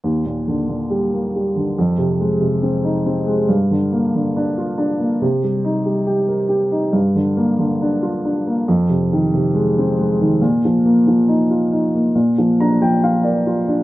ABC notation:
X:1
M:4/4
L:1/16
Q:1/4=69
K:Eb
V:1 name="Upright piano"
z16 | z16 | z16 | z8 z2 b g f d3 |]
V:2 name="Upright piano" clef=bass
E,, B,, D, B,, G, B, G, D, F,, C, A, C, C E C A, | G,, D, B, D, D F D B, C, G, E G, G B G E | G,, D, B, D, D F D B, F,, C, E, C, A, C A, E, | B,, F, B, F, E F E B, B,, F, D F, F B F D |]